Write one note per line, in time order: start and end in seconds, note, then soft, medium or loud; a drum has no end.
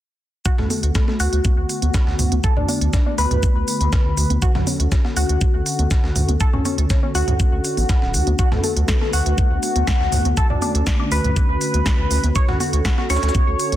0.45 12.32 D3 medium
0.45 4.38 A3 medium
0.45 4.38 B3 medium
0.45 4.38 F#4 medium
0.45 0.55 F#4 medium
0.45 kick loud
0.45 closed hi-hat medium
0.45 shaker medium
0.58 0.66 D2 medium
0.58 0.67 A3 medium
0.58 snare medium
0.58 mid tom medium
0.70 0.80 A3 medium
0.70 open hi-hat medium
0.70 high conga medium
0.70 shaker medium
0.83 0.90 D2 medium
0.83 closed hi-hat medium
0.95 1.05 A3 medium
0.95 kick loud
0.95 snare loud
0.95 closed hi-hat soft
0.95 shaker medium
1.08 1.17 A3 medium
1.08 snare soft
1.08 high conga medium
1.20 1.28 D2 medium
1.20 2.34 F#4 medium
1.20 open hi-hat loud
1.20 shaker medium
1.33 1.40 D2 medium
1.33 closed hi-hat medium
1.45 kick loud
1.45 closed hi-hat soft
1.45 high conga medium
1.45 shaker medium
1.57 1.65 D2 medium
1.69 open hi-hat medium
1.69 shaker medium
1.82 1.90 D2 medium
1.82 closed hi-hat medium
1.82 high conga medium
1.94 kick loud
1.94 snare loud
1.94 closed hi-hat soft
1.94 shaker medium
2.07 2.14 D2 medium
2.07 snare soft
2.19 2.27 D2 medium
2.19 mid tom medium
2.19 open hi-hat loud
2.19 shaker medium
2.32 2.39 D2 medium
2.32 closed hi-hat medium
2.32 high conga medium
2.44 2.54 A4 loud
2.44 kick loud
2.44 closed hi-hat soft
2.44 shaker medium
2.57 2.64 D2 medium
2.57 2.66 D4 medium
2.57 mid tom medium
2.69 2.78 D4 medium
2.69 open hi-hat loud
2.69 high conga medium
2.69 shaker medium
2.81 2.89 D2 medium
2.81 closed hi-hat medium
2.93 3.03 D4 medium
2.93 kick loud
2.93 snare loud
2.93 closed hi-hat medium
2.93 shaker medium
3.06 3.15 D4 medium
3.06 high conga medium
3.18 3.26 D2 medium
3.18 4.33 B4 medium
3.18 open hi-hat loud
3.18 shaker medium
3.31 3.38 D2 medium
3.31 closed hi-hat medium
3.31 mid tom medium
3.43 kick loud
3.43 closed hi-hat soft
3.43 high conga medium
3.43 shaker medium
3.56 3.63 D2 medium
3.68 open hi-hat loud
3.68 shaker medium
3.81 3.88 D2 medium
3.81 closed hi-hat medium
3.81 high conga medium
3.93 kick loud
3.93 snare loud
3.93 closed hi-hat soft
3.93 shaker medium
4.05 4.13 D2 medium
4.17 4.25 D2 medium
4.17 open hi-hat loud
4.17 shaker medium
4.30 4.37 D2 medium
4.30 closed hi-hat medium
4.30 high conga medium
4.42 8.35 C#4 medium
4.42 13.76 F#4 medium
4.42 4.52 F#4 medium
4.42 8.35 A4 medium
4.42 kick loud
4.42 closed hi-hat soft
4.42 shaker medium
4.55 4.62 D2 medium
4.55 4.64 F#3 medium
4.55 snare medium
4.55 mid tom medium
4.67 4.77 F#3 medium
4.67 open hi-hat loud
4.67 high conga medium
4.67 shaker medium
4.80 4.87 D2 medium
4.80 closed hi-hat medium
4.92 5.02 F#3 medium
4.92 kick loud
4.92 snare loud
4.92 closed hi-hat soft
4.92 shaker medium
5.05 5.14 F#3 medium
5.05 snare soft
5.05 high conga medium
5.16 5.24 D2 medium
5.16 6.31 F#4 medium
5.16 open hi-hat loud
5.16 shaker medium
5.29 5.37 D2 medium
5.29 closed hi-hat medium
5.41 kick loud
5.41 closed hi-hat soft
5.41 high conga medium
5.41 shaker medium
5.54 5.61 D2 medium
5.66 open hi-hat loud
5.66 shaker medium
5.79 5.86 D2 medium
5.79 closed hi-hat medium
5.79 high conga medium
5.91 kick loud
5.91 snare loud
5.91 closed hi-hat soft
5.91 shaker medium
6.04 6.11 D2 medium
6.04 snare soft
6.16 6.24 D2 medium
6.16 mid tom medium
6.16 open hi-hat loud
6.16 shaker medium
6.29 6.36 D2 medium
6.29 closed hi-hat medium
6.29 high conga medium
6.40 6.50 A4 medium
6.40 kick loud
6.40 closed hi-hat soft
6.40 shaker medium
6.53 6.61 D2 medium
6.53 6.62 C#4 medium
6.53 mid tom medium
6.65 6.75 C#4 medium
6.65 open hi-hat loud
6.65 high conga medium
6.65 shaker medium
6.78 6.85 D2 medium
6.78 closed hi-hat medium
6.90 7.00 C#4 medium
6.90 kick loud
6.90 snare loud
6.90 closed hi-hat soft
6.90 shaker medium
7.03 7.12 C#4 medium
7.03 high conga medium
7.15 7.23 D2 medium
7.15 8.29 F#4 medium
7.15 open hi-hat loud
7.15 shaker medium
7.28 7.35 D2 medium
7.28 closed hi-hat medium
7.28 mid tom medium
7.40 kick loud
7.40 closed hi-hat soft
7.40 high conga medium
7.40 shaker medium
7.53 7.60 D2 medium
7.64 open hi-hat loud
7.64 shaker medium
7.77 7.85 A1 medium
7.77 open hi-hat medium
7.77 high conga medium
7.89 kick loud
7.89 snare loud
7.89 closed hi-hat soft
7.89 shaker medium
8.02 8.16 D1 medium
8.02 snare soft
8.14 8.22 D2 medium
8.14 open hi-hat loud
8.14 shaker medium
8.27 8.34 D2 medium
8.27 closed hi-hat medium
8.27 high conga medium
8.39 12.32 A3 medium
8.39 10.35 B3 medium
8.39 8.49 F#4 medium
8.39 kick loud
8.39 closed hi-hat soft
8.39 shaker medium
8.52 8.59 D2 medium
8.52 8.61 A3 medium
8.52 snare medium
8.52 mid tom medium
8.64 8.73 A3 medium
8.64 open hi-hat loud
8.64 high conga medium
8.64 shaker medium
8.77 8.84 D2 medium
8.77 closed hi-hat medium
8.88 8.98 A3 medium
8.88 kick loud
8.88 snare loud
8.88 closed hi-hat soft
8.88 shaker medium
9.01 9.10 A3 medium
9.01 snare soft
9.01 high conga medium
9.13 9.21 D2 medium
9.13 10.28 F#4 medium
9.13 open hi-hat loud
9.13 shaker medium
9.26 9.33 D2 medium
9.26 closed hi-hat medium
9.38 kick loud
9.38 closed hi-hat soft
9.38 high conga medium
9.38 shaker medium
9.51 9.58 D2 medium
9.63 open hi-hat loud
9.63 shaker medium
9.76 9.83 D2 medium
9.76 closed hi-hat medium
9.76 high conga medium
9.87 kick loud
9.87 snare loud
9.87 closed hi-hat soft
9.87 shaker medium
10.00 10.08 D2 medium
10.00 snare soft
10.12 10.20 D2 medium
10.12 mid tom medium
10.12 open hi-hat loud
10.12 shaker medium
10.25 10.33 D2 medium
10.25 closed hi-hat medium
10.25 high conga medium
10.37 13.76 C#4 medium
10.37 10.47 A4 loud
10.37 kick loud
10.37 closed hi-hat soft
10.37 shaker medium
10.50 10.57 D2 medium
10.50 10.59 D4 medium
10.50 mid tom medium
10.62 10.72 D4 medium
10.62 open hi-hat loud
10.62 high conga medium
10.62 shaker medium
10.75 10.82 D2 medium
10.75 closed hi-hat medium
10.87 10.97 D4 medium
10.87 kick loud
10.87 snare loud
10.87 closed hi-hat soft
10.87 shaker medium
11.00 11.09 D4 medium
11.00 high conga medium
11.12 11.19 D2 medium
11.12 12.26 B4 medium
11.12 open hi-hat loud
11.12 shaker medium
11.24 11.32 D2 medium
11.24 closed hi-hat medium
11.24 mid tom medium
11.36 kick loud
11.36 closed hi-hat soft
11.36 high conga medium
11.36 shaker medium
11.49 11.56 D2 medium
11.61 open hi-hat loud
11.61 shaker medium
11.74 11.81 D2 medium
11.74 closed hi-hat medium
11.74 high conga medium
11.86 kick loud
11.86 snare loud
11.86 closed hi-hat soft
11.86 shaker medium
11.99 12.06 D2 medium
12.11 12.19 D2 medium
12.11 open hi-hat medium
12.11 shaker medium
12.24 12.31 D2 medium
12.24 closed hi-hat medium
12.24 high conga medium
12.35 13.76 D3 medium
12.35 13.76 A4 medium
12.35 12.45 C#5 loud
12.35 kick loud
12.35 closed hi-hat medium
12.35 shaker medium
12.48 12.56 D2 medium
12.48 12.57 F#4 medium
12.48 snare medium
12.48 mid tom medium
12.60 12.70 F#4 medium
12.60 open hi-hat medium
12.60 high conga medium
12.60 shaker medium
12.73 12.80 D2 medium
12.73 closed hi-hat medium
12.85 12.95 F#4 medium
12.85 kick loud
12.85 snare loud
12.85 closed hi-hat medium
12.85 shaker medium
12.98 13.07 F#4 medium
12.98 snare soft
12.98 high conga medium
13.10 13.18 D2 medium
13.10 13.76 C#5 medium
13.10 snare medium
13.10 open hi-hat medium
13.10 shaker medium
13.16 snare medium
13.16 shaker medium
13.23 13.30 D2 medium
13.23 snare medium
13.23 closed hi-hat medium
13.23 shaker medium
13.29 snare medium
13.29 shaker medium
13.35 kick loud
13.35 closed hi-hat medium
13.35 high conga medium
13.35 shaker medium
13.48 13.55 D2 medium
13.60 open hi-hat medium
13.60 shaker medium
13.72 13.76 D2 medium
13.72 closed hi-hat medium
13.72 high conga medium